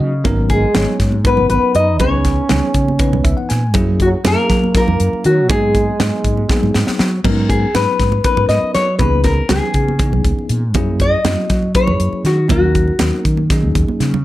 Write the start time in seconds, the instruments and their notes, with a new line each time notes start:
Already playing: tine electric piano F#3 A#3 C#4 D#4 F#4
0.00 fretless electric bass C#3, tine electric piano D#5
0.24 fretless electric bass G#1, tine electric piano F#3 B3 C#4 D#4 A#4, kick, closed hi-hat, high conga, low conga
0.50 trombone G#3, nylon-string guitar G#4, kick, closed hi-hat
0.74 fretless electric bass G#1, tine electric piano F#3 B3 C#4 D#4 C#5, snare, closed hi-hat, low conga
1.00 fretless electric bass G#2, kick, snare, closed hi-hat, low conga
1.12 high conga, low conga
1.24 tine electric piano F#3 B3 C#4 D#4 A#4, trombone B3, nylon-string guitar B4, kick, closed hi-hat
1.37 fretless electric bass G#1, low conga
1.50 fretless electric bass G#1, trombone B3, nylon-string guitar B4, closed hi-hat
1.62 low conga
1.75 fretless electric bass F#2, trombone D#4, nylon-string guitar D#5, closed hi-hat, low conga
1.99 fretless electric bass C#2, tine electric piano E3 B3 C#4 D#4 G#4, trombone C#4, nylon-string guitar C#5, kick, closed hi-hat, high conga, low conga
2.25 kick, snare, closed hi-hat
2.49 fretless electric bass C#2, tine electric piano E3 B3 C#4 D#4 G#4, snare, closed hi-hat, low conga
2.74 fretless electric bass C#3, kick, closed hi-hat, low conga
2.88 high conga, low conga
2.99 tine electric piano E3 B3 C#4 D#4 B4, kick, closed hi-hat
3.13 fretless electric bass C#2, low conga
3.24 fretless electric bass C#2, tine electric piano E5, kick, closed hi-hat, low conga
3.37 tine electric piano F#5, low conga
3.49 fretless electric bass A#2, tine electric piano G#5, snare, closed hi-hat, low conga
3.74 fretless electric bass F#2, tine electric piano F#3 A#3 C#4 E4 G#4, kick, closed hi-hat, high conga, low conga
4.00 nylon-string guitar F#4, kick, closed hi-hat
4.04 trombone F#3
4.24 fretless electric bass F#2, tine electric piano F#3 A#3 C#4 E4 G#4, nylon-string guitar A#4, snare, closed hi-hat, low conga
4.29 trombone A#3
4.49 fretless electric bass F#3, kick, snare, closed hi-hat, low conga
4.64 high conga, low conga
4.75 tine electric piano F#3 A#3 C#4 E4 A#4, trombone A#3, nylon-string guitar A#4, kick, snare, closed hi-hat
4.87 fretless electric bass F#2, low conga
5.00 fretless electric bass F#2, closed hi-hat, low conga
5.13 muted fretless electric bass stroke, low conga
5.24 fretless electric bass D#3, trombone F#3, nylon-string guitar F#4, closed hi-hat, low conga
5.49 fretless electric bass G#2, tine electric piano F#3 A#3 B3 D#4 G#4, trombone G#3, nylon-string guitar G#4, kick, closed hi-hat, high conga, low conga
5.75 kick, closed hi-hat
5.99 fretless electric bass G#2, tine electric piano F#3 A#3 B3 D#4 G#4, snare, closed hi-hat, low conga
6.24 fretless electric bass G#2, kick, closed hi-hat, low conga
6.37 high conga
6.49 tine electric piano F#3 A#3 B3 D#4 G#4, kick, snare, low conga
6.63 fretless electric bass G#2, low conga
6.74 fretless electric bass G#2, snare
6.87 muted fretless electric bass stroke, snare, low conga
6.99 fretless electric bass F#3, snare
7.24 fretless electric bass G#2, tine electric piano F#3 B3 C#4 D#4 A#4, kick, crash, high conga, low conga
7.49 nylon-string guitar G#4, kick, closed hi-hat
7.74 fretless electric bass G#2, tine electric piano F#3 B3 C#4 D#4 B4, nylon-string guitar B4, snare, closed hi-hat, low conga
7.99 fretless electric bass G#2, kick, snare, closed hi-hat, low conga
8.12 high conga, low conga
8.24 tine electric piano F#3 B3 C#4 D#4 A#4, nylon-string guitar B4, kick, closed hi-hat
8.37 fretless electric bass G#2, low conga
8.49 fretless electric bass G#2, nylon-string guitar D#5, snare, closed hi-hat, low conga
8.63 muted fretless electric bass stroke, low conga
8.74 fretless electric bass F#3, nylon-string guitar C#5, snare, closed hi-hat, low conga
8.99 fretless electric bass C#2, tine electric piano E3 B3 C#4 D#4 G#4, nylon-string guitar B4, kick, closed hi-hat, high conga, low conga
9.24 nylon-string guitar A#4, kick, snare, closed hi-hat
9.49 fretless electric bass C#2, tine electric piano E3 B3 C#4 D#4 B4, nylon-string guitar G#4, snare, closed hi-hat, low conga
9.74 fretless electric bass C#3, kick, closed hi-hat, low conga
9.88 high conga, low conga
9.99 tine electric piano E3 B3 C#4 D#4 G#4, kick, closed hi-hat
10.12 fretless electric bass C#2, low conga
10.25 fretless electric bass C#2, kick, closed hi-hat, low conga
10.39 low conga
10.49 fretless electric bass A#2, closed hi-hat, low conga
10.74 fretless electric bass F#2, tine electric piano F#3 A#3 C#4 E4 G#4, kick, closed hi-hat, high conga, low conga
11.00 nylon-string guitar D#5, kick, closed hi-hat
11.25 fretless electric bass F#2, tine electric piano F#3 A#3 C#4 E4 F#4, snare, closed hi-hat, low conga
11.50 fretless electric bass F#3, kick, snare, closed hi-hat, low conga
11.62 low conga
11.75 tine electric piano F#3 A#3 C#4 E4 G#4, nylon-string guitar C#5, kick, closed hi-hat
11.87 fretless electric bass F#2, low conga
12.00 fretless electric bass F#2, closed hi-hat, low conga
12.12 muted fretless electric bass stroke, low conga
12.24 fretless electric bass D#3, nylon-string guitar F#4, snare, closed hi-hat, low conga
12.49 fretless electric bass D#2, tine electric piano F#3 A#3 C#4 D#4 A#4, nylon-string guitar F#4, kick, closed hi-hat, high conga, low conga
12.75 kick, closed hi-hat, low conga
12.88 low conga
12.99 fretless electric bass D#2, tine electric piano F#3 A#3 C#4 D#4 A#4, snare, closed hi-hat, low conga
13.25 fretless electric bass D#3, kick, closed hi-hat
13.37 high conga
13.50 tine electric piano F#3 A#3 C#4 D#4 G#4, kick, snare, closed hi-hat, low conga
13.63 fretless electric bass D#2, high conga
13.75 fretless electric bass D#2, kick, closed hi-hat, high conga
13.88 muted fretless electric bass stroke, high conga
14.00 fretless electric bass C#3, snare, closed hi-hat, low conga
14.14 low conga